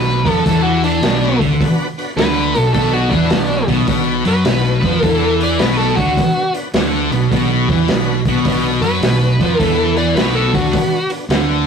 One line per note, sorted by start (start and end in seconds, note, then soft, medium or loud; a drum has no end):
0.00 0.23 B1 medium
0.00 0.18 B2 medium
0.00 0.15 B3 medium
0.00 0.16 D4 medium
0.00 0.16 F#4 medium
0.00 0.16 B4 medium
0.00 0.32 B4 medium
0.25 0.44 F2 loud
0.25 0.45 F3 loud
0.25 0.41 B3 medium
0.25 0.40 D4 medium
0.25 0.41 F#4 medium
0.25 0.41 B4 medium
0.25 kick loud
0.25 open hi-hat medium
0.32 0.43 A4 medium
0.46 0.99 E2 medium
0.46 1.02 E3 loud
0.46 0.73 B3 medium
0.46 0.73 D4 medium
0.46 0.73 F#4 medium
0.46 0.62 A4 medium
0.46 0.73 A4 medium
0.46 kick loud
0.46 open hi-hat medium
0.62 0.82 F#4 medium
0.83 0.98 B3 medium
0.83 0.98 D4 medium
0.83 1.39 D4 medium
0.83 0.98 F#4 medium
0.83 0.98 B4 medium
0.83 open hi-hat soft
1.03 1.38 B1 medium
1.03 1.39 B2 loud
1.03 1.30 B3 medium
1.03 1.29 D4 medium
1.03 1.30 F#4 medium
1.03 1.30 B4 medium
1.03 snare loud
1.03 open hi-hat medium
1.23 snare soft
1.41 1.59 D2 medium
1.41 1.60 D3 medium
1.41 1.55 B3 medium
1.41 1.56 D4 medium
1.41 1.56 F#4 medium
1.41 1.56 B4 medium
1.41 kick medium
1.41 open hi-hat soft
1.61 1.87 B3 loud
1.61 1.87 D4 loud
1.61 1.88 F#4 loud
1.61 1.88 B4 loud
1.61 kick loud
1.61 open hi-hat medium
1.98 2.12 B3 medium
1.98 2.12 D4 medium
1.98 2.12 F#4 medium
1.98 2.12 B4 medium
1.98 open hi-hat soft
2.16 2.51 D2 medium
2.16 2.53 D3 medium
2.16 2.43 B3 medium
2.16 2.44 D4 medium
2.16 2.44 F#4 medium
2.16 2.59 B4 medium
2.16 2.44 B4 medium
2.16 snare loud
2.16 open hi-hat medium
2.54 2.73 B1 medium
2.54 2.71 B2 medium
2.54 2.68 B3 medium
2.54 2.69 D4 medium
2.54 2.69 F#4 medium
2.54 2.69 B4 medium
2.54 open hi-hat soft
2.59 2.73 A4 medium
2.74 3.09 B1 medium
2.74 3.10 B2 loud
2.74 3.01 B3 medium
2.74 3.01 D4 medium
2.74 3.01 F#4 medium
2.74 2.94 A4 medium
2.74 3.02 B4 loud
2.74 kick loud
2.74 open hi-hat medium
2.94 3.12 F#4 medium
3.09 3.30 E2 medium
3.09 3.31 E3 medium
3.09 3.26 B3 medium
3.09 3.66 D4 medium
3.09 3.26 D4 medium
3.09 3.26 F#4 medium
3.09 3.27 B4 medium
3.09 kick loud
3.09 open hi-hat soft
3.30 3.66 B1 medium
3.30 3.62 B2 medium
3.30 3.58 B3 medium
3.30 3.58 D4 medium
3.30 3.58 F#4 medium
3.30 3.59 B4 medium
3.30 snare loud
3.30 open hi-hat medium
3.68 3.87 B1 medium
3.68 3.87 B2 loud
3.68 3.82 B3 medium
3.68 3.83 D4 medium
3.68 3.83 F#4 medium
3.68 3.83 B4 medium
3.68 kick medium
3.68 open hi-hat soft
3.86 4.23 B1 medium
3.86 4.24 B2 medium
3.86 4.14 B3 loud
3.86 4.14 D4 loud
3.86 4.15 F#4 medium
3.86 4.15 B4 loud
3.86 kick loud
3.86 open hi-hat medium
4.24 4.44 F#2 medium
4.24 4.45 F#3 medium
4.24 4.39 B3 medium
4.24 4.40 D4 medium
4.24 4.39 F#4 medium
4.24 4.40 B4 medium
4.24 5.05 B4 medium
4.24 open hi-hat soft
4.45 4.80 B1 medium
4.45 4.75 B2 medium
4.45 4.72 B3 medium
4.45 4.72 D4 medium
4.45 4.73 F#4 medium
4.45 4.73 B4 medium
4.45 snare loud
4.45 open hi-hat medium
4.80 5.01 F2 medium
4.80 4.96 B3 medium
4.80 4.96 D4 medium
4.80 4.97 F#4 medium
4.80 4.97 B4 medium
4.80 kick medium
4.80 open hi-hat soft
4.84 5.03 F3 loud
5.00 5.56 E2 medium
5.00 5.28 B3 loud
5.00 5.28 D4 loud
5.00 5.29 F#4 loud
5.00 5.28 B4 loud
5.00 kick medium
5.00 open hi-hat medium
5.04 5.60 E3 loud
5.04 5.38 A4 medium
5.38 5.53 B3 medium
5.38 5.54 D4 medium
5.38 5.54 F#4 medium
5.38 5.54 B4 medium
5.38 open hi-hat soft
5.43 5.61 D5 medium
5.58 5.94 B1 medium
5.58 5.85 B3 medium
5.58 5.85 D4 medium
5.58 5.85 F#4 medium
5.58 5.86 B4 medium
5.58 5.77 B4 medium
5.58 snare medium
5.58 open hi-hat medium
5.62 5.97 B2 medium
5.78 5.97 A4 medium
5.96 6.16 D2 medium
5.96 6.16 D3 loud
5.96 6.11 B3 medium
5.96 6.11 D4 medium
5.96 6.52 F#4 medium
5.96 6.12 F#4 medium
5.96 6.12 B4 medium
5.96 kick medium
5.96 open hi-hat soft
6.16 6.43 B3 medium
6.16 6.43 D4 medium
6.16 6.43 F#4 medium
6.16 6.44 B4 loud
6.16 kick loud
6.16 open hi-hat medium
6.52 6.67 B3 medium
6.52 6.68 D4 medium
6.52 6.68 F#4 medium
6.52 6.69 B4 medium
6.52 open hi-hat soft
6.74 7.08 D2 medium
6.74 7.11 D3 medium
6.74 7.00 B3 medium
6.74 7.01 D4 medium
6.74 7.01 F#4 medium
6.74 7.01 C#5 medium
6.74 snare loud
6.74 open hi-hat medium
7.10 7.30 B1 medium
7.10 7.28 B2 medium
7.10 7.25 B3 medium
7.10 7.26 D4 medium
7.10 7.25 F#4 medium
7.10 7.26 B4 medium
7.10 open hi-hat soft
7.29 7.66 B1 medium
7.29 7.56 B3 loud
7.29 7.57 D4 loud
7.29 7.58 F#4 medium
7.29 7.58 B4 loud
7.29 kick loud
7.29 open hi-hat medium
7.33 7.68 B2 medium
7.68 7.87 E2 medium
7.68 7.89 E3 medium
7.68 7.82 B3 medium
7.68 7.82 D4 medium
7.68 7.83 F#4 medium
7.68 7.83 B4 medium
7.68 kick loud
7.68 open hi-hat soft
7.87 8.22 B1 medium
7.87 8.19 B2 medium
7.87 8.15 B3 medium
7.87 8.15 D4 medium
7.87 8.16 F#4 medium
7.87 8.15 B4 medium
7.87 8.23 B5 medium
7.87 snare loud
7.87 open hi-hat medium
8.25 8.44 B1 medium
8.25 8.46 B2 medium
8.25 8.40 B3 medium
8.25 8.41 D4 medium
8.25 8.41 F#4 medium
8.25 8.41 B4 medium
8.25 8.45 F#5 medium
8.25 kick medium
8.25 open hi-hat soft
8.45 8.79 B1 medium
8.45 8.82 B2 loud
8.45 8.72 B3 loud
8.45 8.72 D4 loud
8.45 8.73 F#4 loud
8.45 8.73 B4 loud
8.45 kick loud
8.45 open hi-hat medium
8.80 8.99 F#2 medium
8.80 8.96 B3 medium
8.80 8.97 D4 medium
8.80 8.97 F#4 medium
8.80 9.61 B4 loud
8.80 8.97 B4 medium
8.80 open hi-hat soft
8.84 9.02 F#3 medium
9.00 9.35 B1 medium
9.00 9.33 B2 medium
9.00 9.29 B3 medium
9.00 9.29 D4 medium
9.00 9.29 F#4 medium
9.00 snare loud
9.00 open hi-hat medium
9.04 9.30 B4 medium
9.39 9.58 F2 medium
9.39 9.59 F3 loud
9.39 9.55 B3 medium
9.39 9.55 D4 medium
9.39 9.55 F#4 medium
9.39 9.55 C#5 medium
9.39 kick medium
9.39 open hi-hat soft
9.59 10.12 E2 medium
9.59 10.16 E3 loud
9.59 9.87 B3 loud
9.59 9.87 D4 medium
9.59 9.87 F#4 medium
9.59 9.93 A4 loud
9.59 9.88 B4 loud
9.59 kick loud
9.59 open hi-hat medium
9.96 10.11 B3 medium
9.96 10.11 D4 medium
9.96 10.11 F#4 medium
9.96 10.11 B4 medium
9.96 10.15 D5 medium
9.96 open hi-hat soft
10.15 10.50 B1 medium
10.15 10.53 B2 medium
10.15 10.42 B3 medium
10.15 10.43 D4 medium
10.15 10.43 F#4 medium
10.15 10.34 B4 medium
10.15 10.43 B4 medium
10.15 snare loud
10.15 open hi-hat medium
10.35 10.55 A4 medium
10.52 10.72 D2 medium
10.52 10.73 D3 loud
10.52 10.67 B3 medium
10.52 10.67 D4 medium
10.52 10.68 F#4 medium
10.52 11.10 F#4 medium
10.52 10.68 A4 medium
10.52 kick loud
10.52 open hi-hat soft
10.71 10.99 B3 medium
10.71 10.99 D4 medium
10.71 10.99 F#4 medium
10.71 10.99 B4 medium
10.71 kick loud
10.71 open hi-hat medium
11.09 11.24 B3 medium
11.09 11.25 D4 medium
11.09 11.25 F#4 medium
11.09 11.25 B4 medium
11.09 open hi-hat soft
11.29 11.64 D2 medium
11.29 11.66 D3 loud
11.29 11.57 B3 medium
11.29 11.57 D4 medium
11.29 11.57 F#4 medium
11.29 11.57 B4 medium
11.29 snare loud
11.29 open hi-hat medium